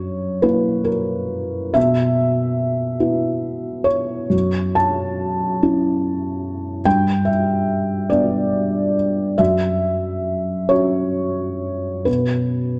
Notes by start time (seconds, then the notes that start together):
Already playing: F#2 C#5
0.42 A#3 E4 B4
0.84 A#4
1.74 B2 E5
3.00 B3 E4
3.84 C#5
4.30 F#2
4.75 A5
5.62 C#4 E4
6.85 G2 G5
7.25 E5
8.10 B3 D4 D5
9.38 F#2 E5
10.69 C#4 F#4 C#5
12.05 B2 B4